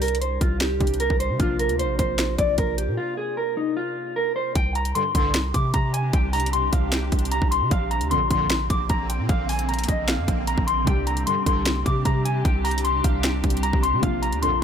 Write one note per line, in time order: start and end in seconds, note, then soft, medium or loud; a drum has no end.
0.00 0.39 C2 loud
0.00 0.75 C3 medium
0.00 0.76 G3 medium
0.00 0.77 D4 medium
0.00 0.77 G4 medium
0.00 0.19 A#4 medium
0.00 closed hi-hat soft
0.00 open hi-hat medium
0.08 closed hi-hat medium
0.15 closed hi-hat medium
0.21 0.38 C5 medium
0.21 closed hi-hat medium
0.41 0.79 C2 loud
0.41 0.58 F4 medium
0.41 kick medium
0.41 closed hi-hat medium
0.61 0.98 G4 medium
0.61 finger snap medium
0.61 snare loud
0.61 closed hi-hat medium
0.79 1.09 C2 loud
0.79 1.36 C3 medium
0.79 1.40 G3 medium
0.79 1.39 D4 soft
0.79 1.40 G4 medium
0.79 kick medium
0.79 closed hi-hat medium
0.87 closed hi-hat medium
0.94 closed hi-hat medium
1.00 1.17 A#4 medium
1.00 closed hi-hat medium
1.10 1.31 C2 loud
1.10 kick medium
1.20 1.37 C5 medium
1.20 closed hi-hat medium
1.30 1.39 C3 loud
1.37 1.71 A#1 loud
1.37 4.50 C3 medium
1.37 4.51 A#3 medium
1.37 4.52 D4 medium
1.37 1.57 F4 loud
1.37 kick loud
1.37 closed hi-hat medium
1.42 4.53 F4 medium
1.59 1.76 A#4 medium
1.59 closed hi-hat medium
1.69 1.86 D2 loud
1.69 closed hi-hat medium
1.79 1.96 C5 medium
1.79 closed hi-hat medium
1.84 1.98 A#1 loud
1.99 2.37 A#1 loud
1.99 2.36 C5 medium
1.99 kick loud
1.99 closed hi-hat medium
2.18 finger snap medium
2.18 snare loud
2.18 closed hi-hat medium
2.38 2.57 A#1 loud
2.38 2.56 D5 medium
2.38 kick medium
2.38 closed hi-hat medium
2.58 2.89 A#1 loud
2.58 2.75 A#4 medium
2.58 kick loud
2.58 closed hi-hat medium
2.78 2.95 G4 medium
2.78 closed hi-hat medium
2.88 2.97 A#2 loud
2.97 3.15 F4 loud
3.17 3.34 G#4 medium
3.37 3.54 A#4 medium
3.57 3.74 D#4 medium
3.77 4.14 F4 medium
4.16 4.33 A#4 medium
4.36 4.53 C5 medium
4.55 4.93 C2 loud
4.55 7.68 C3 medium
4.55 13.99 C4 medium
4.55 7.68 D4 medium
4.55 7.68 G4 loud
4.55 4.73 G5 loud
4.55 kick loud
4.55 closed hi-hat medium
4.75 4.93 A#5 medium
4.75 closed hi-hat medium
4.85 closed hi-hat medium
4.95 5.03 G2 medium
4.95 5.03 D3 medium
4.95 5.12 C6 medium
4.95 closed hi-hat medium
5.15 5.53 C2 loud
5.15 5.32 G2 medium
5.15 5.32 D3 loud
5.15 5.52 C6 medium
5.15 kick medium
5.15 closed hi-hat medium
5.34 finger snap medium
5.34 snare loud
5.34 closed hi-hat medium
5.54 5.73 C3 loud
5.54 5.71 D6 medium
5.54 kick medium
5.54 closed hi-hat medium
5.74 6.12 C3 loud
5.74 5.91 A#5 medium
5.74 kick loud
5.74 closed hi-hat medium
5.94 6.11 G#5 medium
5.94 closed hi-hat medium
6.13 6.70 C2 loud
6.13 6.31 G5 loud
6.13 kick loud
6.13 closed hi-hat medium
6.33 6.50 A#5 medium
6.33 closed hi-hat medium
6.33 open hi-hat medium
6.40 closed hi-hat medium
6.46 closed hi-hat medium
6.53 6.70 C6 medium
6.53 closed hi-hat medium
6.73 7.11 C2 loud
6.73 6.90 F5 medium
6.73 kick loud
6.73 closed hi-hat medium
6.92 7.29 G5 medium
6.92 finger snap medium
6.92 snare loud
6.92 closed hi-hat medium
7.12 7.41 C2 loud
7.12 kick medium
7.12 closed hi-hat medium
7.19 closed hi-hat medium
7.25 closed hi-hat medium
7.31 7.49 A#5 medium
7.31 closed hi-hat medium
7.42 7.63 C2 loud
7.42 kick medium
7.51 7.69 C6 medium
7.51 closed hi-hat medium
7.61 7.71 C3 loud
7.71 8.02 A#1 loud
7.71 10.84 D3 medium
7.71 10.84 A#3 medium
7.71 7.88 F5 loud
7.71 kick loud
7.71 closed hi-hat medium
7.91 8.08 A#5 medium
7.91 closed hi-hat medium
8.01 8.17 D2 loud
8.01 closed hi-hat medium
8.11 8.19 F2 loud
8.11 8.19 A#2 medium
8.11 8.19 D3 loud
8.11 8.28 C6 medium
8.11 closed hi-hat medium
8.16 8.30 A#1 loud
8.30 8.68 A#1 loud
8.30 8.47 F2 medium
8.30 8.47 A#2 loud
8.30 8.47 D3 loud
8.30 8.68 C6 medium
8.30 kick loud
8.30 closed hi-hat medium
8.50 finger snap medium
8.50 snare loud
8.50 closed hi-hat medium
8.70 8.89 A#1 loud
8.70 8.87 D6 medium
8.70 kick loud
8.70 closed hi-hat medium
8.89 9.21 A#1 loud
8.89 9.07 A#5 medium
8.89 kick loud
8.89 closed hi-hat medium
9.09 9.27 G5 medium
9.09 closed hi-hat medium
9.19 9.29 A#2 loud
9.29 9.86 A#1 loud
9.29 9.46 F5 loud
9.29 kick loud
9.29 closed hi-hat medium
9.49 9.66 G#5 medium
9.49 closed hi-hat medium
9.49 open hi-hat medium
9.59 closed hi-hat medium
9.69 9.86 A#5 medium
9.69 closed hi-hat soft
9.74 closed hi-hat medium
9.79 closed hi-hat medium
9.84 closed hi-hat medium
9.88 10.20 A#1 loud
9.88 10.06 D#5 medium
9.88 kick loud
9.88 closed hi-hat medium
10.08 10.45 F5 medium
10.08 finger snap medium
10.08 snare loud
10.08 closed hi-hat medium
10.18 10.27 F2 loud
10.28 10.56 A#1 loud
10.28 kick loud
10.28 closed hi-hat medium
10.47 10.65 A#5 medium
10.47 closed hi-hat medium
10.58 10.86 A#1 loud
10.58 kick medium
10.67 10.84 C6 medium
10.67 closed hi-hat medium
10.84 11.25 C2 loud
10.84 13.38 C3 medium
10.84 14.00 C3 medium
10.84 13.39 G3 medium
10.84 14.64 D4 medium
10.84 13.40 D4 medium
10.84 14.00 G4 loud
10.84 11.04 G5 loud
10.84 kick loud
10.84 closed hi-hat medium
10.89 13.41 G4 medium
11.07 11.24 A#5 medium
11.07 closed hi-hat medium
11.17 closed hi-hat medium
11.27 11.35 G2 medium
11.27 11.35 D3 medium
11.27 11.44 C6 medium
11.27 closed hi-hat medium
11.46 11.84 C2 loud
11.46 11.63 G2 medium
11.46 11.63 D3 loud
11.46 11.83 C6 medium
11.46 kick loud
11.46 closed hi-hat medium
11.66 finger snap medium
11.66 snare loud
11.66 closed hi-hat medium
11.86 12.05 C3 loud
11.86 12.03 D6 medium
11.86 kick loud
11.86 closed hi-hat medium
12.05 12.43 C3 loud
12.05 12.22 A#5 medium
12.05 kick loud
12.05 closed hi-hat medium
12.25 12.42 G#5 medium
12.25 closed hi-hat medium
12.45 13.02 C2 loud
12.45 12.62 G5 loud
12.45 kick loud
12.45 closed hi-hat medium
12.65 12.82 A#5 medium
12.65 closed hi-hat medium
12.65 open hi-hat medium
12.71 closed hi-hat medium
12.78 closed hi-hat medium
12.84 13.02 C6 medium
12.84 closed hi-hat medium
13.04 13.42 C2 loud
13.04 13.21 F5 medium
13.04 kick loud
13.04 closed hi-hat medium
13.24 13.61 G5 medium
13.24 finger snap medium
13.24 snare loud
13.24 closed hi-hat medium
13.43 13.72 C2 loud
13.43 13.99 C3 medium
13.43 14.03 G3 medium
13.43 14.02 D4 medium
13.43 14.03 G4 medium
13.43 kick medium
13.43 closed hi-hat medium
13.50 closed hi-hat medium
13.57 closed hi-hat medium
13.63 13.80 A#5 medium
13.63 closed hi-hat medium
13.73 13.95 C2 loud
13.73 kick medium
13.83 14.00 C6 medium
13.83 closed hi-hat medium
13.93 14.02 C3 loud
14.00 14.34 A#1 loud
14.00 14.64 C3 medium
14.00 14.64 A#3 medium
14.00 14.64 C4 medium
14.00 14.64 D4 medium
14.00 14.20 F5 loud
14.00 kick loud
14.00 closed hi-hat medium
14.05 14.64 F4 medium
14.22 14.40 A#5 medium
14.22 closed hi-hat medium
14.32 14.49 D2 loud
14.32 closed hi-hat medium
14.42 14.51 F2 medium
14.42 14.51 A#2 medium
14.42 14.51 D3 loud
14.42 14.59 C6 medium
14.42 closed hi-hat medium
14.47 14.61 A#1 loud